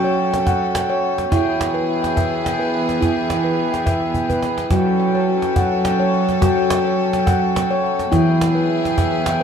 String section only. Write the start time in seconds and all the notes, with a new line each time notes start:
Already playing: F#3 C#4 A4
1.31 E3 B3 G#4
4.71 F#3 C#4 A4
8.12 E3 B3 G#4